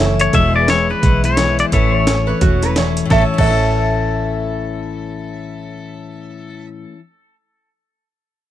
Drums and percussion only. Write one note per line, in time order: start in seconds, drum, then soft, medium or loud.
0.19 closed hi-hat medium
0.33 kick medium
0.33 closed hi-hat medium
0.68 snare loud
0.68 closed hi-hat medium
1.03 kick loud
1.03 closed hi-hat medium
1.24 closed hi-hat medium
1.37 snare medium
1.37 closed hi-hat medium
1.59 closed hi-hat medium
1.72 kick medium
1.72 closed hi-hat medium
2.07 snare loud
2.07 closed hi-hat medium
2.41 kick loud
2.41 closed hi-hat medium
2.63 closed hi-hat medium
2.76 snare medium
2.76 closed hi-hat medium
2.97 closed hi-hat medium
3.10 kick medium
3.10 snare medium
3.38 kick loud
3.38 crash medium